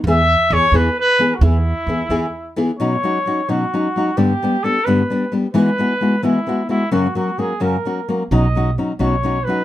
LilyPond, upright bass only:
\new Staff \with { instrumentName = "Upright bass" } { \clef bass \time 6/8 \key e \major \tempo 4. = 87 e,4 e,16 r16 e,8 r4 | e,4 e,16 r16 e,8 r4 | \key b \major r2. | r2. |
r2. | r2. | b,,4. b,,4. | }